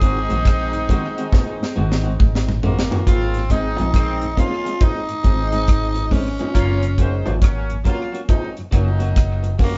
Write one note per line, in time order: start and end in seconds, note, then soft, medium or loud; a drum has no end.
0.00 0.26 G#1 loud
0.00 0.18 D#3 medium
0.00 2.59 G#3 medium
0.00 0.11 G#3 medium
0.00 0.18 G#3 medium
0.00 2.59 C4 medium
0.00 0.11 C4 medium
0.00 0.18 C4 medium
0.00 2.59 D#4 medium
0.00 0.11 F#4 medium
0.00 0.18 F#4 medium
0.00 2.05 G#4 loud
0.00 kick medium
0.00 closed hi-hat medium
0.29 0.87 A#1 medium
0.29 0.35 G#2 medium
0.29 0.55 A#2 medium
0.29 0.35 D#3 medium
0.29 0.37 D#3 medium
0.29 0.37 G#3 medium
0.29 0.37 C4 medium
0.29 0.36 F#4 medium
0.29 closed hi-hat soft
0.45 kick loud
0.45 cross-stick loud
0.45 closed hi-hat medium
0.73 0.78 G#2 medium
0.73 0.78 D#3 medium
0.73 closed hi-hat soft
0.89 1.05 D#3 medium
0.89 0.98 G#3 medium
0.89 1.05 G#3 medium
0.89 0.99 C4 medium
0.89 1.05 C4 medium
0.89 0.99 F#4 medium
0.89 1.05 F#4 medium
0.89 kick medium
0.89 closed hi-hat medium
0.89 low bongo medium
1.17 1.25 D#3 medium
1.17 1.25 G#3 medium
1.17 1.24 C4 medium
1.17 1.24 F#4 medium
1.17 closed hi-hat medium
1.33 kick loud
1.33 snare medium
1.33 high bongo medium
1.59 1.65 G#2 medium
1.59 1.65 D#3 medium
1.59 snare medium
1.75 2.18 G#1 medium
1.75 2.02 G#2 medium
1.75 1.92 D#3 medium
1.75 1.85 G#3 medium
1.75 1.92 G#3 medium
1.75 1.85 C4 medium
1.75 1.92 C4 medium
1.75 1.85 F#4 medium
1.75 1.93 F#4 medium
1.75 high bongo soft
1.92 snare medium
2.03 2.09 G#2 medium
2.03 2.08 D#3 medium
2.03 2.11 D#3 medium
2.03 2.11 G#3 medium
2.03 2.11 C4 medium
2.03 2.11 F#4 medium
2.20 2.88 G#1 medium
2.20 2.46 G#2 medium
2.20 kick loud
2.20 mid tom medium
2.35 snare medium
2.47 2.52 G#2 medium
2.47 2.52 D#3 medium
2.47 mid tom medium
2.63 2.79 D#3 medium
2.63 2.72 G#3 medium
2.63 2.79 G#3 medium
2.63 3.11 A#3 medium
2.63 2.73 C4 medium
2.63 2.79 C4 medium
2.63 2.73 F#4 medium
2.63 2.79 F#4 medium
2.63 floor tom medium
2.63 low bongo medium
2.79 snare loud
2.91 2.96 G#2 medium
2.91 2.96 D#3 medium
2.91 2.99 D#3 soft
2.91 2.99 G#3 medium
2.91 2.98 C4 medium
2.91 2.98 F#4 medium
2.91 floor tom medium
2.91 high bongo medium
3.07 3.75 G#1 loud
3.07 3.42 C#3 medium
3.07 3.42 A#3 medium
3.07 3.52 C4 medium
3.07 3.42 F4 loud
3.07 kick loud
3.07 closed hi-hat loud
3.07 high bongo medium
3.34 3.40 G#2 medium
3.34 3.40 D#3 medium
3.34 closed hi-hat soft
3.50 3.66 G#3 medium
3.50 3.60 G#3 medium
3.50 3.86 G#3 medium
3.50 3.60 C4 medium
3.50 3.66 C4 medium
3.50 3.86 C4 medium
3.50 4.41 D#4 loud
3.50 3.60 D#4 medium
3.50 3.86 D#4 medium
3.50 3.66 D#4 medium
3.50 3.67 G#4 medium
3.50 kick medium
3.50 closed hi-hat medium
3.77 4.35 A#1 medium
3.77 3.84 G#2 medium
3.77 3.84 D#3 medium
3.77 3.86 G#3 soft
3.77 3.85 C4 medium
3.77 3.85 D#4 medium
3.77 3.85 G#4 medium
3.77 closed hi-hat soft
3.77 high bongo medium
3.94 4.29 D#3 medium
3.94 4.29 G#3 medium
3.94 4.29 C4 loud
3.94 kick loud
3.94 cross-stick loud
3.94 closed hi-hat medium
4.22 4.27 G#2 medium
4.22 4.27 D#3 medium
4.22 closed hi-hat medium
4.37 4.53 G#3 medium
4.37 4.47 G#3 medium
4.37 4.72 A#3 medium
4.37 4.47 C4 medium
4.37 4.53 C4 medium
4.37 4.72 C#4 medium
4.37 4.47 D#4 medium
4.37 4.53 D#4 medium
4.37 4.72 F4 medium
4.37 4.85 F4 loud
4.37 4.54 G#4 medium
4.37 kick medium
4.37 closed hi-hat medium
4.37 low bongo medium
4.65 4.73 G#3 medium
4.65 4.72 C4 soft
4.65 4.72 D#4 medium
4.65 4.72 G#4 medium
4.65 closed hi-hat medium
4.80 5.03 G#3 medium
4.80 5.03 C4 medium
4.80 5.03 D#4 medium
4.80 6.14 D#4 loud
4.80 kick loud
4.80 closed hi-hat medium
4.80 high bongo medium
5.09 5.14 G#2 medium
5.09 5.14 D#3 medium
5.09 closed hi-hat soft
5.23 5.66 G#1 medium
5.23 5.40 G#3 medium
5.23 5.34 G#3 medium
5.23 6.07 G#3 medium
5.23 5.34 C4 medium
5.23 6.08 C4 medium
5.23 5.40 C4 medium
5.23 6.07 D#4 medium
5.23 5.34 D#4 medium
5.23 5.40 D#4 loud
5.23 5.41 G#4 medium
5.23 kick loud
5.23 closed hi-hat medium
5.23 high bongo soft
5.52 5.57 G#2 medium
5.52 5.57 D#3 medium
5.52 5.60 G#3 medium
5.52 5.60 C4 medium
5.52 5.59 D#4 medium
5.52 5.59 G#4 medium
5.52 closed hi-hat soft
5.68 6.36 G#1 medium
5.68 kick loud
5.68 cross-stick loud
5.68 closed hi-hat medium
5.95 6.01 G#2 medium
5.95 6.01 D#3 medium
5.95 closed hi-hat soft
5.95 high bongo soft
6.11 6.27 G#3 medium
6.11 6.21 G#3 medium
6.11 6.27 C4 medium
6.11 6.21 C4 medium
6.11 7.42 C#4 loud
6.11 6.27 D#4 medium
6.11 6.21 D#4 medium
6.11 6.28 G#4 medium
6.11 kick medium
6.11 open hi-hat medium
6.11 low bongo medium
6.39 6.45 G#2 medium
6.39 6.45 D#3 medium
6.39 6.47 G#3 soft
6.39 6.47 C4 medium
6.39 6.46 D#4 medium
6.39 6.46 G#4 medium
6.39 closed hi-hat soft
6.39 high bongo medium
6.54 7.23 F#1 loud
6.54 6.89 A#3 loud
6.54 6.90 C#4 loud
6.54 6.89 F4 loud
6.54 kick medium
6.54 closed hi-hat loud
6.54 high bongo medium
6.83 6.89 F#2 medium
6.83 6.89 C#3 medium
6.83 closed hi-hat medium
6.98 7.14 F#3 medium
6.98 7.08 F#3 medium
6.98 7.33 G#3 medium
6.98 7.14 A#3 medium
6.98 7.09 A#3 medium
6.98 7.14 C#4 medium
6.98 7.09 C#4 medium
6.98 7.33 D#4 medium
6.98 7.15 F#4 medium
6.98 7.33 C5 medium
6.98 kick medium
6.98 closed hi-hat medium
7.26 7.83 G#1 medium
7.26 7.32 F#2 medium
7.26 7.32 C#3 medium
7.26 7.34 F#3 soft
7.26 7.34 A#3 medium
7.26 7.33 C#4 medium
7.26 7.33 F#4 medium
7.26 closed hi-hat soft
7.26 high bongo medium
7.42 7.77 F#3 medium
7.42 7.77 A#3 medium
7.42 7.77 C#4 loud
7.42 kick loud
7.42 cross-stick loud
7.42 closed hi-hat medium
7.70 7.75 F#2 medium
7.70 7.75 C#3 medium
7.70 closed hi-hat soft
7.85 8.01 F#3 medium
7.85 7.95 F#3 medium
7.85 8.01 A#3 medium
7.85 8.20 A#3 medium
7.85 7.95 A#3 medium
7.85 8.20 C#4 medium
7.85 8.01 C#4 medium
7.85 7.95 C#4 medium
7.85 8.20 F4 loud
7.85 8.02 F#4 medium
7.85 kick medium
7.85 closed hi-hat medium
7.85 low bongo medium
8.12 8.20 F#3 soft
8.12 8.20 A#3 medium
8.12 8.20 C#4 medium
8.12 8.20 F#4 medium
8.12 closed hi-hat soft
8.29 8.51 G#3 medium
8.29 8.51 C4 medium
8.29 8.51 D#4 medium
8.29 kick loud
8.29 closed hi-hat medium
8.29 high bongo medium
8.57 8.63 F#2 medium
8.57 8.63 C#3 medium
8.57 closed hi-hat soft
8.71 9.14 F#1 medium
8.71 8.88 F#3 medium
8.71 8.82 F#3 medium
8.71 9.56 F#3 medium
8.71 8.88 A#3 medium
8.71 8.82 A#3 medium
8.71 9.56 A#3 medium
8.71 8.88 C#4 medium
8.71 8.82 C#4 medium
8.71 9.56 D#4 medium
8.71 8.88 F#4 medium
8.71 kick loud
8.71 cross-stick medium
8.71 closed hi-hat medium
8.71 high bongo soft
8.99 9.05 F#2 medium
8.99 9.05 C#3 medium
8.99 9.07 F#3 medium
8.99 9.07 A#3 medium
8.99 9.07 C#4 medium
8.99 9.07 F#4 medium
8.99 closed hi-hat soft
9.16 9.78 F#1 medium
9.16 kick loud
9.16 cross-stick loud
9.16 closed hi-hat medium
9.43 9.49 F#2 medium
9.43 9.49 C#3 medium
9.43 closed hi-hat soft
9.43 high bongo soft
9.59 9.69 F#3 medium
9.59 9.75 F#3 medium
9.59 9.69 A#3 medium
9.59 9.75 A#3 medium
9.59 9.69 C#4 medium
9.59 9.75 C#4 medium
9.59 9.75 F#4 medium
9.59 kick medium
9.59 open hi-hat medium
9.59 low bongo medium
9.63 9.78 A#3 medium